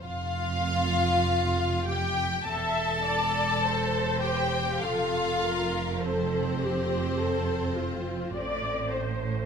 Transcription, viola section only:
X:1
M:4/4
L:1/8
Q:1/4=51
K:F
V:1 name="Viola section"
z4 e d c2 | A B A G A F d c |]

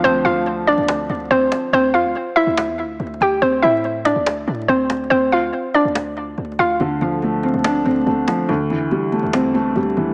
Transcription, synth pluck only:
X:1
M:4/4
L:1/8
Q:1/4=142
K:Dm
V:1 name="Synth pluck"
[Cc] [Ff] z [Dd]3 [Cc]2 | [Cc] [Ff] z [Ee]4 [Gg] | [Cc] [Ee] z [Dd]3 [Cc]2 | [Cc] [Ff] z [Dd]4 [Ff] |
z8 | z8 |]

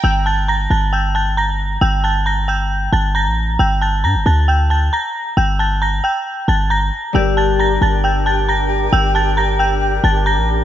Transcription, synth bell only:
X:1
M:4/4
L:1/8
Q:1/4=135
K:Gm
V:1 name="Synth bell"
[gg'] [aa'] [bb'] [aa'] [gg'] [aa'] [bb']2 | [gg'] [aa'] [bb'] [gg']2 [aa'] [bb']2 | [gg'] [aa'] [bb'] [aa'] [gg'] [aa'] [bb']2 | [gg'] [aa'] [bb'] [gg']2 [aa'] [bb']2 |
[gg'] [aa'] [bb'] [aa'] [gg'] [aa'] [bb']2 | [gg'] [aa'] [bb'] [gg']2 [aa'] [bb']2 |]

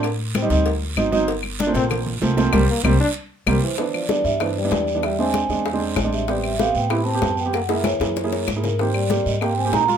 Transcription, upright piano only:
X:1
M:4/4
L:1/16
Q:1/4=192
K:Cmix
V:1 name="Upright piano"
z4 z [G,C_E] [G,CE]2 z4 [^F,CE] z [F,CE]2 | z4 z [F,A,B,C] [F,A,B,C]4 z2 [F,A,B,C] z [F,A,B,C]2 | [G,B,C]2 z2 [G,B,C]2 z6 [G,B,C]2 z2 | [K:Ephr] [E,B,D]3 z [E,B,D]3 z [E,B,D]2 z [E,B,D]3 z [E,B,D] |
z2 [^G,^B,D]3 z [G,B,D]2 z [G,B,D]3 z [G,B,D]2 z | [B,CG]3 z [B,CG]3 z [B,CG]2 z [B,CG]3 z [B,CG] | z2 [^A,E^G]3 z [A,EG]2 z [A,EG]3 z [A,EG]2 z | [_B,CG]3 z [B,CG]3 z [B,CG]2 z [B,CG]3 z2 |]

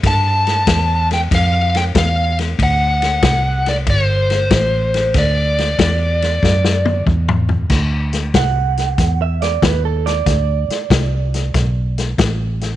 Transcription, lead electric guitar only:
X:1
M:4/4
L:1/8
Q:"Swing" 1/4=94
K:Dmix
V:1 name="Lead electric guitar"
a3 g =f g f z | f3 d c4 | d6 z2 | z8 |
z8 |]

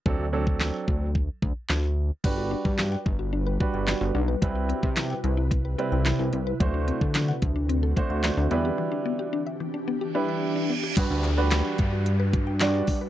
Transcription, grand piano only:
X:1
M:4/4
L:1/16
Q:1/4=110
K:G
V:1 name="Grand piano"
[F,CDA] z [F,CDA]4- [F,CDA] z8 z | [G,DFB]4- [G,DFB] z4 z [G,DFB]4 z2 | [G,CEB]4- [G,CEB] z4 z [G,CEB]4 z2 | [A,DFc]4- [A,DFc] z4 z [A,DFc]4 [G,DEB]2- |
[G,DEB]4 z6 [G,DEB]4 z2 | [G,DFB]2 z [G,DFB]4- [G,DFB] z4 [G,DFd]3 z |]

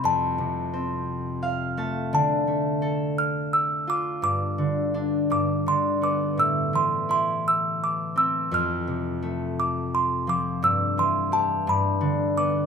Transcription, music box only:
X:1
M:6/8
L:1/8
Q:3/8=57
K:Flyd
V:1 name="Music box"
a4 z2 | a3 f' e' d' | d'3 d' c' d' | e' c' c' e' d' e' |
f'3 d' c' d' | e' c' a b2 d' |]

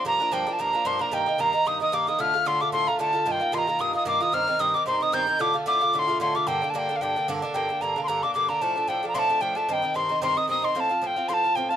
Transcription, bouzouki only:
X:1
M:4/4
L:1/8
Q:"Swing" 1/4=224
K:Gm
V:1 name="Bouzouki"
[G,,F,B,D] [F,B,D] [G,,F,B,D] [F,B,D] [G,,F,B,D] [F,B,D] [G,,F,B,D] [F,B,D] | [G,,E,B,E] [E,B,E] [G,,E,B,E] [E,B,E] [G,,E,B,E] [E,B,E] [G,,E,B,E] [E,B,E] | [A,,D,A,F] [D,A,F] [A,,D,A,F] [D,A,F] [A,,D,A,F] [D,A,F] [A,,D,A,F] [D,A,F] | [G,,E,B,F] [E,B,F] [G,,E,B,F] [E,B,F] [G,,E,B,F] [E,B,F] [G,,E,B,F] [E,B,F] |
[G,,E,CE] [E,CE] [G,,E,CE] [E,CE] [G,,E,CE] [E,CE] [G,,E,CE] E | [A,,D,A,F] [D,A,F] [A,,D,A,F] [D,A,F] [A,,D,A,F] [D,A,F] [A,,D,A,F] [D,A,F] | [G,,D,B,D] [D,B,D] [G,,D,B,D] [D,B,D] [G,,D,B,D] [D,B,D] [G,,D,B,D] [D,B,D] | [G,,D,B,D] [D,B,D] [G,,D,B,D] [D,B,D] [G,,D,B,D] [D,B,D] [G,,D,B,D] [D,B,D] |
[A,,F,A,D] [F,A,D] [A,,F,A,D] [F,A,D] [A,,F,A,D] [F,A,D] [A,,F,A,D] [F,A,D] | [G,,E,CE] [E,CE] [G,,E,CE] [E,CE] [G,,E,CE] [E,CE] [G,,E,CE] [E,CE] | [A,,F,CF] [F,CF] [A,,F,CF] [F,CF] [A,,F,CF] [F,CF] [A,,F,CF] [F,CF] |]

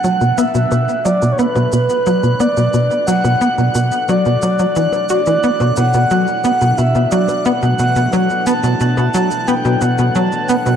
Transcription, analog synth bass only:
X:1
M:4/4
L:1/16
Q:1/4=89
K:Bm
V:1 name="Analog synth bass" clef=bass
F, B,, B, B,, B,, z F, B,, B, B,, B,, z F, B,, B, B,, | B,, z F, B,, B, B,, B,, z F, B,, F, F, E, z F E, | B, B,, B,, B,, F, z B, B,, B,, B,, F, z B, B,, B,, B,, | F, z B, B,, B,, B,, F, z B, B,, B,, B,, F, z B, B,, |]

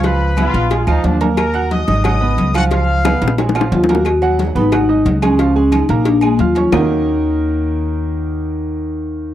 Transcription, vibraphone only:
X:1
M:4/4
L:1/8
Q:1/4=180
K:Ebm
V:1 name="Vibraphone"
z8 | z8 | z6 F G- | G2 z E3 z D- |
D D E2 =D B, F2 | E8- | E8 |]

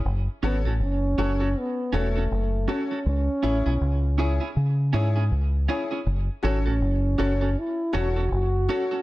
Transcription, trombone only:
X:1
M:4/4
L:1/8
Q:"Swing 16ths" 1/4=80
K:F#m
V:1 name="Trombone"
z B, C2 B, A,2 C | C4 z4 | z C3 E F F2 |]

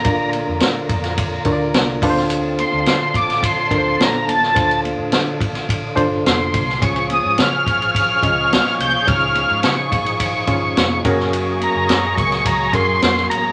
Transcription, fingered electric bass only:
X:1
M:4/4
L:1/16
Q:1/4=106
K:Dphr
V:1 name="Fingered electric bass" clef=bass
B,,,3 F,, z2 F,,4 D,,2 C,,2 D,,2- | D,,3 D,, D,2 A,,,4 D,,2 B,,,2 A,,,2 | D,,3 A,, D,2 A,,,4 G,,,2 F,,,2 C,,2 | _D,,3 _A,, _D,2 _A,,,4 D,,3 z C,, B,,, |
_D,,3 _A,, _D,2 _A,,,4 G,,,2 F,,,2 _G,,,2- | _G,,,3 G,,, _G,,2 _D,,2 D,,2 G,,2 F,,2 z2 |]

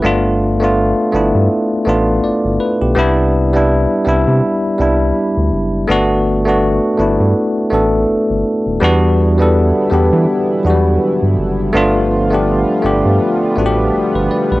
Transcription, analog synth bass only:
X:1
M:4/4
L:1/16
Q:"Swing 16ths" 1/4=82
K:G
V:1 name="Analog synth bass" clef=bass
G,,,4- G,,, z G,,, G,, z2 A,,,2 G,,, G,,, z B,,, | C,,4- C,, z C,, C, z2 C,,2 z D,, F,,,2 | G,,,4- G,,, z G,,, G,, z2 A,,,2 G,,, G,,, z ^D,,, | E,,4- E,, z E,, E, z2 E,,2 z G,, F,,,2 |
G,,,4- G,,, z G,,, G,, z2 A,,,2 G,,, G,,, z B,,, |]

